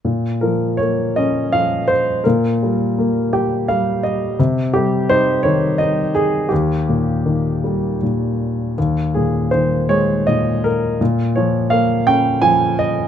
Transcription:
<<
  \new Staff \with { instrumentName = "Grand piano" } { \time 3/4 \key bes \dorian \tempo 4 = 83 << { r2. | r4. g''8 f''8 ees''8 | r2. | r2. |
r2. | r2. | } \\ { r8 bes'8 des''8 ees''8 f''8 c''8 | bes'2 r4 | r8 g'8 c''8 des''8 ees''8 aes'8 | g'2 r4 |
r8 aes'8 c''8 des''8 ees''8 bes'8 | r8 des''8 f''8 g''8 aes''8 ees''8 | } >> }
  \new Staff \with { instrumentName = "Grand piano" } { \clef bass \time 3/4 \key bes \dorian bes,8 f8 bes8 des'8 f4 | bes,8 g8 bes8 g'8 g4 | c8 g8 ees'8 ees8 ees'4 | ees,8 bes,8 ees8 g8 bes,4 |
ees,8 bes,8 ees8 aes8 bes,4 | bes,8 f8 bes8 des'8 f4 | }
>>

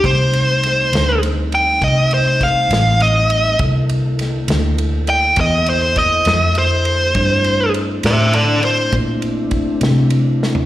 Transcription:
<<
  \new Staff \with { instrumentName = "Lead electric guitar" } { \time 12/8 \key c \mixolydian \tempo 4. = 67 c''2 r8 g''8 ees''8 c''8 f''4 ees''4 | r2 r8 g''8 ees''8 c''8 ees''4 c''4~ | c''4 r8 <c'' e''>8 <a' d''>8 c''8 r2. | }
  \new Staff \with { instrumentName = "Tonewheel organ" } { \time 12/8 \key c \mixolydian <g a c' ees'>1. | <d bes e' a'>1. | <a c' d' e'>1. | }
  \new Staff \with { instrumentName = "Fingered electric bass" } { \clef bass \time 12/8 \key c \mixolydian c,4. d,4. c,4. a,,4. | c,4. d,4. e,4. f,4. | g,4. a,4. bes,4. c4. | }
  \new DrumStaff \with { instrumentName = "Drums" } \drummode { \time 12/8 <bd cymr>8 cymr8 <cymr sn>8 <cymr sn>8 cymr8 cymr8 <bd cymr>8 cymr8 <bd cymr sn>8 <cymr sn>8 cymr8 cymr8 | <bd cymr>8 cymr8 <cymr sn>8 <cymr sn>8 cymr8 cymr8 <bd cymr>8 cymr8 <bd cymr sn>8 <cymr sn>8 cymr8 cymr8 | <bd cymr>8 cymr8 cymr8 <cymr sn>8 cymr8 cymr8 <bd cymr>8 cymr8 <bd cymr>8 <cymr sn>8 cymr8 sn16 tomfh16 | }
>>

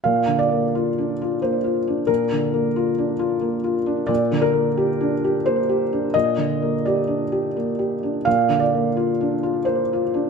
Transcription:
\new Staff \with { instrumentName = "Felt piano" } { \time 3/4 \key bes \major \tempo 4 = 87 << { f''8 d''4. c''4 | bes'2~ bes'8 r8 | d''8 bes'4. c''4 | ees''4 d''4 r4 |
f''8 d''4. c''4 | } \\ { \tuplet 3/2 { bes,8 d8 bes8 f'8 d'8 f'8 bes8 f'8 d'8 } | \tuplet 3/2 { bes,8 d8 bes8 f'8 d'8 f'8 bes8 f'8 d'8 } | \tuplet 3/2 { bes,8 d8 bes8 g'8 d'8 g'8 bes8 g'8 d'8 } | \tuplet 3/2 { bes,8 d8 bes8 g'8 d'8 g'8 bes8 g'8 d'8 } |
\tuplet 3/2 { bes,8 d8 bes8 f'8 d'8 f'8 bes8 f'8 d'8 } | } >> }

